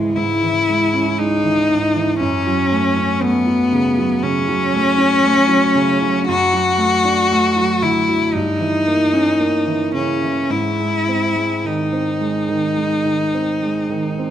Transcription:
0.00 0.13 C#2 soft
0.00 0.16 G#2 soft
0.00 0.43 E3 soft
0.00 0.17 G#3 soft
0.00 0.69 G#3 soft
0.00 0.94 C#4 soft
0.16 0.58 G#2 soft
0.16 1.20 E4 medium
0.43 0.83 E3 soft
0.69 1.09 G#3 soft
0.94 1.34 C#4 soft
1.18 1.60 G#3 soft
1.18 2.20 D#4 medium
1.44 1.85 E3 soft
1.70 2.11 G#2 soft
1.95 2.21 E3 soft
2.20 4.19 F#2 soft
2.20 3.24 C#4 medium
2.47 2.87 F#3 soft
2.72 3.12 A3 soft
2.97 3.37 C#4 soft
3.22 3.63 A3 soft
3.22 4.25 B3 medium
3.47 3.88 F#3 soft
3.72 4.13 C#3 soft
3.98 4.38 F#3 soft
4.23 4.64 C#3 soft
4.23 6.28 C#4 medium
4.48 4.88 F#3 soft
4.74 5.14 A3 soft
4.98 5.39 C#4 soft
5.23 5.65 A3 soft
5.48 5.91 F#3 soft
5.75 6.18 C#3 soft
6.02 6.29 F#3 soft
6.28 8.30 F#2 soft
6.28 7.84 F#4 medium
6.53 6.95 F#3 soft
6.78 7.20 A3 soft
7.04 7.46 D4 soft
7.31 7.72 A3 soft
7.56 7.98 F#3 soft
7.82 8.24 D3 soft
7.82 8.35 E4 medium
8.09 8.35 F#3 soft
8.34 10.47 G2 soft
8.34 9.93 D#4 medium
8.60 9.02 E3 soft
8.87 9.29 A#3 soft
9.13 9.56 C#4 soft
9.40 9.83 A#3 soft
9.67 10.11 E3 soft
9.94 10.39 C#3 soft
9.94 10.52 C#4 soft
10.22 10.51 E3 soft
10.50 12.74 G#2 soft
10.50 11.67 E4 medium
10.80 11.26 G#3 soft
11.08 11.54 C4 soft
11.36 11.82 G#3 soft
11.64 12.10 D#3 soft
11.64 14.30 D#4 soft
11.92 12.38 C4 soft
12.21 12.67 G#3 soft
12.49 12.94 D#3 soft
12.77 13.23 G#3 soft
13.05 13.51 D#3 soft
13.34 13.79 C4 soft
13.62 14.07 G#3 soft
13.90 14.30 D#3 soft
14.18 14.30 C4 soft

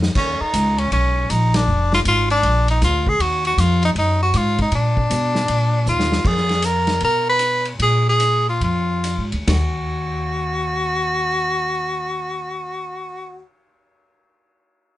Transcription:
0.00 0.14 F2 medium
0.00 snare medium
0.15 0.38 D#2 medium
0.15 0.42 C#4 medium
0.15 kick medium
0.15 crash medium
0.40 0.81 D#4 medium
0.40 muted upright bass stroke soft
0.54 0.91 C#2 medium
0.54 hi-hat pedal medium
0.54 ride medium
0.78 0.92 C#4 medium
0.78 ride soft
0.91 1.28 B1 medium
0.91 1.32 C#4 medium
0.91 ride medium
1.29 1.67 A#1 medium
1.29 1.57 D#4 medium
1.29 hi-hat pedal soft
1.29 ride medium
1.54 1.93 D4 medium
1.54 snare medium
1.54 ride medium
1.67 2.05 F1 medium
1.92 2.00 F4 medium
1.92 snare medium
2.05 2.42 G#1 medium
2.05 2.30 F4 medium
2.05 hi-hat pedal medium
2.05 ride medium
2.30 2.66 D4 loud
2.30 ride soft
2.43 2.80 A#1 medium
2.43 ride medium
2.68 2.82 D#4 medium
2.68 ride soft
2.82 3.19 D2 medium
2.82 3.10 F4 medium
2.82 snare soft
2.82 hi-hat pedal medium
2.82 ride medium
3.07 3.23 G#4 medium
3.07 kick medium
3.19 3.57 D#2 medium
3.19 3.45 F#4 medium
3.19 ride medium
3.45 3.61 F#4 medium
3.45 ride soft
3.57 3.95 F2 medium
3.57 3.83 F4 medium
3.57 hi-hat pedal medium
3.57 ride medium
3.83 3.90 D#4 medium
3.83 ride soft
3.95 4.33 F#2 medium
3.95 4.20 D#4 medium
3.95 ride medium
4.22 4.38 F#4 medium
4.34 4.71 G#2 medium
4.34 4.60 F4 medium
4.34 hi-hat pedal soft
4.34 ride medium
4.58 4.73 D#4 medium
4.58 kick medium
4.58 ride soft
4.72 5.09 A#2 medium
4.72 5.84 D4 medium
4.72 ride medium
4.97 kick medium
5.10 5.47 B2 medium
5.10 hi-hat pedal medium
5.10 ride medium
5.35 snare soft
5.48 5.85 A#2 medium
5.48 ride medium
5.86 6.23 D#2 medium
5.86 6.28 F4 medium
5.86 hi-hat pedal medium
6.00 snare medium
6.12 snare medium
6.24 6.97 F2 medium
6.24 6.67 G#4 medium
6.24 kick medium
6.24 crash medium
6.37 snare soft
6.49 snare soft
6.49 ride soft
6.62 7.02 A#4 medium
6.62 hi-hat pedal medium
6.62 ride medium
6.87 snare soft
6.87 ride soft
7.00 7.76 B2 medium
7.00 7.26 A#4 loud
7.00 ride medium
7.29 7.68 B4 loud
7.39 hi-hat pedal soft
7.39 ride medium
7.65 ride soft
7.79 8.57 A#2 medium
7.79 8.05 G#4 medium
7.79 ride medium
8.09 8.46 G#4 medium
8.20 hi-hat pedal medium
8.20 ride medium
8.49 8.62 F4 medium
8.61 9.14 F2 medium
8.61 9.30 F4 medium
8.61 ride soft
9.04 hi-hat pedal soft
9.04 ride medium
9.18 9.32 G#2 medium
9.32 9.47 D2 medium
9.32 ride soft
9.47 13.41 D#2 medium
9.47 13.43 F#4 medium
9.47 snare medium
9.47 floor tom loud
9.47 ride bell medium

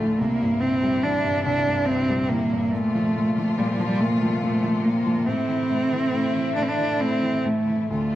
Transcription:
0.00 0.16 D2 medium
0.00 0.22 A2 medium
0.00 0.18 D3 medium
0.00 0.22 D3 medium
0.00 0.22 F3 soft
0.00 0.18 A3 medium
0.00 0.20 A3 medium
0.00 0.18 F4 medium
0.19 1.45 C2 medium
0.19 5.23 A#2 medium
0.19 2.70 C3 medium
0.19 0.62 A#3 medium
0.19 2.70 E4 medium
0.42 1.24 G2 soft
0.61 1.87 C3 soft
0.61 1.05 C4 medium
0.84 2.08 G3 soft
1.03 2.29 E3 medium
1.03 1.45 D4 medium
1.25 1.65 G2 soft
1.45 2.69 C2 medium
1.45 1.88 D4 medium
1.67 2.50 G2 soft
1.86 2.70 C3 medium
1.86 2.30 C4 medium
2.09 2.71 G3 medium
2.29 2.72 E3 medium
2.29 2.73 A#3 medium
2.52 2.72 G2 medium
2.71 3.14 A#2 medium
2.71 7.86 C3 medium
2.71 3.59 A3 medium
2.71 5.24 F4 medium
2.95 3.36 F3 medium
3.16 3.57 A#2 medium
3.38 3.78 F3 medium
3.58 3.99 A#2 medium
3.58 3.69 G3 medium
3.68 3.73 A3 soft
3.72 3.82 G3 medium
3.79 4.21 F3 medium
3.79 3.87 F3 medium
3.86 4.02 G3 medium
4.00 4.42 A#2 medium
4.00 4.10 A3 medium
4.08 4.15 A#3 medium
4.13 4.25 A3 medium
4.22 4.63 F3 soft
4.22 4.28 G3 soft
4.22 4.40 A3 medium
4.41 4.84 A#2 medium
4.41 4.86 A3 medium
4.64 5.05 F3 soft
4.84 5.26 A#2 medium
4.84 5.28 A#3 medium
5.07 5.27 F3 soft
5.25 5.68 A2 medium
5.25 7.88 A3 medium
5.25 6.54 C4 medium
5.25 7.87 E4 medium
5.48 5.91 E3 soft
5.70 6.12 A2 medium
5.92 6.34 E3 soft
6.13 6.56 A2 soft
6.36 6.77 E3 soft
6.55 6.99 A2 medium
6.55 6.64 D4 medium
6.63 6.70 C4 medium
6.69 7.03 D4 medium
6.79 7.20 E3 soft
7.00 7.44 A2 soft
7.00 7.47 C4 medium
7.22 7.66 E3 soft
7.45 7.89 A2 soft
7.45 7.90 A3 medium
7.67 7.90 E3 soft
7.90 8.15 D2 soft
7.90 8.15 D3 medium
7.90 8.15 A3 medium
7.90 8.15 C4 medium
7.90 8.15 F4 medium

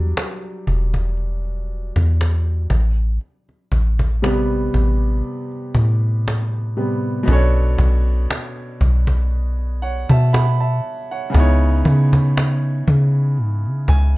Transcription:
0.00 0.14 E2 loud
0.00 2.72 F#3 medium
0.00 2.71 G3 medium
0.00 2.72 D4 medium
0.17 cajon slap loud
0.44 cajon slap soft
0.67 1.92 E1 loud
0.67 cajon bass medium
0.94 cajon bass medium
1.17 cajon slap soft
1.45 cajon slap soft
1.96 2.67 E2 loud
1.96 cajon bass medium
2.21 cajon slap medium
2.46 cajon slap soft
2.70 3.19 A1 loud
2.70 cajon bass loud
3.21 cajon slap soft
3.49 cajon slap soft
3.72 4.70 A1 loud
3.72 cajon bass medium
3.99 cajon bass loud
4.22 5.71 C3 medium
4.22 5.71 G3 medium
4.22 5.72 B3 medium
4.22 cajon slap loud
4.50 cajon slap soft
4.74 5.23 A1 loud
4.74 cajon bass medium
5.01 cajon slap soft
5.24 cajon slap soft
5.52 cajon slap soft
5.75 7.24 A2 medium
5.75 cajon bass medium
6.28 cajon slap loud
6.53 cajon slap soft
6.77 7.24 C3 soft
6.77 7.24 G3 soft
6.77 7.24 B3 soft
6.77 cajon slap soft
6.94 cajon slap soft
7.11 cajon slap soft
7.23 11.28 B2 medium
7.23 11.29 B3 medium
7.28 7.77 B1 loud
7.28 7.35 C#4 medium
7.28 11.32 A4 medium
7.28 cajon bass loud
7.33 11.34 D4 medium
7.33 9.81 C#5 medium
7.55 cajon slap soft
7.78 8.27 B1 loud
7.78 cajon bass loud
8.06 cajon slap soft
8.30 cajon slap loud
8.57 cajon slap soft
8.81 10.06 B1 loud
8.81 cajon bass loud
9.07 cajon bass medium
9.31 cajon slap soft
9.58 cajon slap soft
9.82 10.09 C#5 medium
9.82 10.08 F#5 medium
10.09 10.81 B2 loud
10.09 10.32 E5 medium
10.09 10.32 A5 medium
10.09 cajon bass loud
10.33 10.59 F#5 medium
10.33 10.59 B5 medium
10.33 cajon slap loud
10.60 11.09 E5 medium
10.60 11.09 A5 medium
10.60 cajon slap soft
11.11 11.38 C#5 medium
11.11 11.60 F#5 medium
11.30 14.17 C#3 medium
11.30 14.17 B3 medium
11.34 11.83 C#2 loud
11.34 14.17 D#4 medium
11.34 14.17 E4 medium
11.34 cajon bass loud
11.40 14.17 C#5 medium
11.62 cajon slap soft
11.85 12.83 C#3 loud
11.85 cajon bass loud
12.13 cajon bass loud
12.37 cajon slap loud
12.64 cajon slap soft
12.88 13.40 C#3 loud
12.88 cajon bass medium
13.15 cajon slap soft
13.37 13.67 G#2 loud
13.37 cajon slap soft
13.65 13.88 C#3 loud
13.65 cajon slap soft
13.88 14.17 C#2 loud
13.88 14.14 G#5 medium
13.88 cajon bass loud

